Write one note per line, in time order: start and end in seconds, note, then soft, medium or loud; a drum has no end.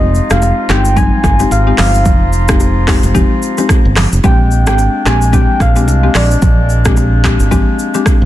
0.00 0.19 F1 loud
0.00 4.07 F3 medium
0.00 0.27 G#3 medium
0.00 0.27 C4 medium
0.00 0.27 D#4 medium
0.00 4.07 D#4 medium
0.00 4.07 F4 medium
0.00 0.27 G4 loud
0.00 0.33 D#5 medium
0.15 shaker soft
0.30 0.51 F1 loud
0.30 0.66 G#3 medium
0.30 0.67 C4 medium
0.30 0.67 D#4 medium
0.30 0.67 G4 medium
0.30 0.72 F5 loud
0.30 cross-stick loud
0.30 low bongo medium
0.30 shaker medium
0.42 high bongo medium
0.42 shaker medium
0.69 1.09 G1 medium
0.69 0.95 G#3 medium
0.69 0.95 C4 medium
0.69 0.95 D#4 medium
0.69 0.95 G4 medium
0.69 0.99 G5 loud
0.69 cross-stick medium
0.69 clap loud
0.69 low bongo medium
0.69 shaker medium
0.85 shaker medium
0.97 1.36 G3 loud
0.97 1.36 G#3 medium
0.97 1.36 C4 medium
0.97 1.36 D#4 medium
0.97 1.53 G#5 loud
0.97 kick medium
0.97 low conga medium
0.97 shaker medium
1.24 1.44 G1 loud
1.24 kick medium
1.24 cross-stick medium
1.24 shaker medium
1.40 1.58 G#3 medium
1.40 1.58 C4 medium
1.40 1.59 D#4 medium
1.40 1.59 G4 medium
1.40 low bongo medium
1.40 shaker medium
1.51 1.71 G#1 loud
1.51 1.79 F5 loud
1.51 high bongo medium
1.51 shaker medium
1.67 1.86 G#3 medium
1.67 1.86 C4 medium
1.67 1.86 D#4 medium
1.67 1.86 G4 medium
1.78 2.06 G1 medium
1.78 2.30 F5 loud
1.78 cross-stick medium
1.78 clap medium
1.78 open hi-hat medium
1.78 low conga medium
1.78 shaker medium
1.94 shaker medium
2.05 2.99 F1 loud
2.05 kick loud
2.05 low conga medium
2.05 shaker medium
2.33 shaker soft
2.48 2.85 G#3 medium
2.48 2.85 C4 medium
2.48 2.85 D#4 medium
2.48 2.85 G4 medium
2.48 kick medium
2.48 cross-stick loud
2.48 low bongo medium
2.48 shaker medium
2.60 high bongo medium
2.60 shaker medium
2.87 3.13 G#3 medium
2.87 3.13 C4 medium
2.87 3.13 D#4 medium
2.87 3.13 G4 medium
2.87 kick medium
2.87 cross-stick medium
2.87 clap medium
2.87 open hi-hat medium
2.87 low bongo medium
2.87 shaker medium
3.03 3.23 F1 medium
3.03 shaker medium
3.15 3.54 G#3 loud
3.15 3.54 C4 medium
3.15 3.54 D#4 medium
3.15 3.54 G4 loud
3.15 kick medium
3.15 low conga medium
3.15 shaker medium
3.42 shaker medium
3.58 3.77 G#3 medium
3.58 3.77 C4 medium
3.58 3.77 D#4 medium
3.58 3.77 G4 medium
3.58 low bongo medium
3.58 shaker medium
3.69 kick loud
3.69 cross-stick loud
3.69 high bongo medium
3.69 shaker medium
3.85 4.05 G1 medium
3.96 cross-stick medium
3.96 clap medium
3.96 open hi-hat medium
3.96 low conga medium
3.96 shaker medium
4.13 4.21 F1 medium
4.13 shaker medium
4.24 4.67 A#1 loud
4.24 4.63 G#3 loud
4.24 8.25 G#3 medium
4.24 8.25 A#3 medium
4.24 4.63 C4 medium
4.24 8.25 D4 medium
4.24 4.63 D4 medium
4.24 4.63 G4 loud
4.24 4.65 G5 loud
4.24 kick loud
4.24 low conga medium
4.24 shaker medium
4.51 shaker soft
4.67 4.87 G#1 loud
4.67 5.03 G#3 medium
4.67 5.03 C4 medium
4.67 5.03 D4 medium
4.67 5.03 G4 medium
4.67 5.09 G5 loud
4.67 cross-stick loud
4.67 low bongo medium
4.67 shaker medium
4.78 high bongo medium
4.78 shaker medium
5.06 5.46 A#1 medium
5.06 5.31 G#3 medium
5.06 5.31 C4 medium
5.06 5.31 D4 medium
5.06 5.31 G4 medium
5.06 5.36 G#5 loud
5.06 cross-stick medium
5.06 clap medium
5.06 low bongo medium
5.06 shaker medium
5.22 shaker medium
5.33 5.72 G#3 medium
5.33 5.72 C4 medium
5.33 5.72 D4 medium
5.33 5.73 G4 loud
5.33 5.63 G5 loud
5.33 kick medium
5.33 low conga medium
5.33 shaker medium
5.60 5.88 A#1 medium
5.60 6.18 F5 loud
5.60 kick medium
5.60 cross-stick medium
5.60 shaker medium
5.76 5.95 G#3 medium
5.76 5.95 C4 medium
5.76 5.95 D4 medium
5.76 5.95 G4 medium
5.76 low bongo medium
5.76 shaker medium
5.88 6.07 C2 medium
5.88 high bongo medium
5.88 shaker medium
6.03 6.22 G#3 medium
6.03 6.22 C4 medium
6.03 6.22 D4 medium
6.03 6.22 G4 medium
6.15 6.35 A#1 medium
6.15 6.70 D5 medium
6.15 cross-stick medium
6.15 clap medium
6.15 open hi-hat medium
6.15 low conga medium
6.15 shaker medium
6.31 shaker medium
6.42 7.36 A#1 loud
6.42 kick loud
6.42 low conga medium
6.42 shaker medium
6.69 shaker soft
6.85 7.21 G#3 medium
6.85 7.21 C4 medium
6.85 7.21 D4 medium
6.85 7.22 G4 medium
6.85 kick loud
6.85 cross-stick loud
6.85 low bongo medium
6.85 shaker medium
6.97 high bongo medium
6.97 shaker medium
7.24 7.49 G#3 medium
7.24 7.50 C4 medium
7.24 7.50 D4 medium
7.24 7.50 G4 medium
7.24 kick medium
7.24 cross-stick medium
7.24 clap loud
7.24 low bongo medium
7.24 shaker medium
7.40 7.60 G#1 medium
7.40 shaker medium
7.51 7.91 G#3 medium
7.51 7.91 C4 medium
7.51 7.91 D4 medium
7.51 7.91 G4 loud
7.51 kick medium
7.51 low conga medium
7.51 shaker medium
7.79 shaker medium
7.94 8.13 G#3 medium
7.94 8.13 C4 medium
7.94 8.13 D4 medium
7.94 8.13 G4 medium
7.94 low bongo medium
7.94 shaker medium
8.06 kick loud
8.06 cross-stick loud
8.06 high bongo medium
8.06 shaker medium
8.22 8.25 A#1 medium